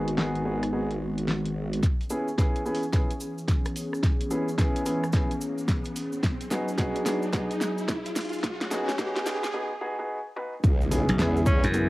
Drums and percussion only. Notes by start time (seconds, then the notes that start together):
0.08 closed hi-hat
0.18 snare
0.36 closed hi-hat
0.63 cross-stick, closed hi-hat
0.91 closed hi-hat
1.18 closed hi-hat
1.28 snare
1.46 closed hi-hat
1.73 closed hi-hat
1.83 kick, snare, closed hi-hat, cabasa
2.00 closed hi-hat, cabasa
2.10 cabasa
2.28 cabasa
2.38 kick, snare, closed hi-hat, cabasa
2.56 closed hi-hat, cabasa
2.66 cabasa
2.75 open hi-hat
2.83 cabasa
2.93 kick, snare, closed hi-hat, cabasa
3.11 closed hi-hat, cabasa
3.20 cabasa
3.38 cabasa
3.48 kick, snare, closed hi-hat, cabasa
3.65 cross-stick, closed hi-hat, cabasa
3.76 open hi-hat, cabasa
3.93 cross-stick, cabasa
4.03 kick, snare, closed hi-hat, cabasa
4.21 closed hi-hat, cabasa
4.31 cabasa
4.48 cabasa
4.58 kick, snare, closed hi-hat, cabasa
4.76 closed hi-hat, cabasa
4.86 open hi-hat, cabasa
5.03 cross-stick, cabasa
5.12 kick, snare, closed hi-hat, cabasa
5.31 closed hi-hat, cabasa
5.41 cabasa
5.58 cabasa
5.68 kick, snare, closed hi-hat, cabasa
5.84 closed hi-hat, cabasa
5.96 open hi-hat, cabasa
6.12 cabasa
6.23 kick, snare, closed hi-hat, cabasa
6.41 closed hi-hat, cabasa
6.51 snare, cabasa
6.68 cabasa
6.78 kick, snare, closed hi-hat, cabasa
6.96 closed hi-hat, cabasa
7.06 snare, open hi-hat, cabasa
7.22 cabasa
7.33 kick, snare, closed hi-hat, cabasa
7.51 closed hi-hat, cabasa
7.61 snare, cabasa
7.78 cabasa
7.88 kick, snare, closed hi-hat, cabasa
8.06 closed hi-hat, cabasa
8.16 snare, open hi-hat, cabasa
8.21 open hi-hat
8.25 open hi-hat
8.29 open hi-hat, cabasa
8.33 open hi-hat
8.36 open hi-hat
8.39 open hi-hat
8.41 kick, snare, closed hi-hat, open hi-hat, cabasa
8.61 snare, closed hi-hat, cabasa
8.71 snare, cabasa
8.89 snare, cabasa
8.98 kick, snare, closed hi-hat, cabasa
9.16 snare, closed hi-hat, cabasa
9.26 snare, open hi-hat, cabasa
9.44 snare, cabasa
10.37 high tom
10.64 kick, closed hi-hat, cabasa
10.81 cabasa
10.91 open hi-hat, cabasa
11.09 closed hi-hat, cabasa
11.19 snare, closed hi-hat, cabasa
11.37 cabasa
11.46 kick, cabasa
11.63 closed hi-hat, cabasa
11.74 closed hi-hat, cabasa